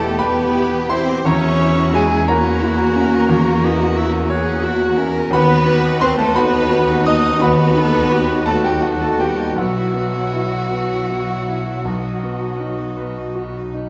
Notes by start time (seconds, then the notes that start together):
Already playing: E2 B2 A3 B3 E4 G4 A4 B4 C5 G5 A5 B5 C6
0.02 B3
0.18 G3 B3 B4 G5 B5
0.36 B3
0.55 E4 G4
0.73 G4
0.89 C4 E4 C5 C6
1.08 B3
1.25 E2 A#3 C#4 E4 F#4 C#5 E5 A#5 C#6
1.44 C#4
1.59 C#4 E4
1.79 F#4
1.93 G#3 E4 F#4 G#4 G#5
2.12 C#4
2.27 A#3 E4 F#4 A#4 C#5 F#5 A#5
2.43 C#4
2.60 E4 F#4
2.78 F#4
2.95 C#4 E4 F#4
3.13 C#4
3.29 E2 A#3 C#5
3.48 C#4
3.63 E3 E4 D#5
3.80 F#4
3.96 E4 F#4 E5
4.14 C#4
4.30 A#3 F#4 G#4 C#5 F#5
4.47 C#4
4.62 E4 F#4
4.82 F#4
4.97 C#4 E4 A#4
5.15 C#4
5.31 D#2 B3 F#4 B4 F#5 B5
5.35 B3 B4
5.51 D#4
5.66 B3 F#4
5.85 D#4
5.99 B3 C4 F#4 C5 C6
6.17 A3 D#4 A4 A5
6.34 B3 D#4 F#4 B4 F#5 B5
6.55 D#4
6.70 B3 F#4
6.91 D#4
7.06 B3 D#4 F#4 D#5 D#6
7.27 D#4
7.39 D#2 B3 F#4 B4 F#5 B5
7.43 B3 B4 F#5
7.62 D#4
7.76 D#3 F#4 A4
7.98 D#4
8.12 F#4 G4
8.16 B3
8.32 D#4
8.46 A3 F#4 A4 B4 A5
8.63 G3 D#4 G4 G5
8.68 G3
8.81 F#3 B3 F#4 F#5
8.88 F#3
9.01 A3 D#4 A4 A5
9.19 G3 B3 F#4 G4 G5
9.25 G3
9.39 D#4
9.56 B1 F#3 B3 F#4 B4 E5 F#5
9.60 F#3 F#5
9.76 E4
9.94 B3
10.14 E4
10.32 B3 E4
10.52 E4
10.72 B3 B4
10.92 E4
11.10 B3 F#4
11.29 E4
11.48 B3 E4
11.67 E4
11.84 B1 B3 F#4 D#5
12.03 D#4
12.23 B3
12.42 D#4
12.59 B3 D#4
12.79 D#4
12.97 B3 B4
13.16 D#4
13.35 B3 F#4
13.56 D#4
13.74 B3 D#4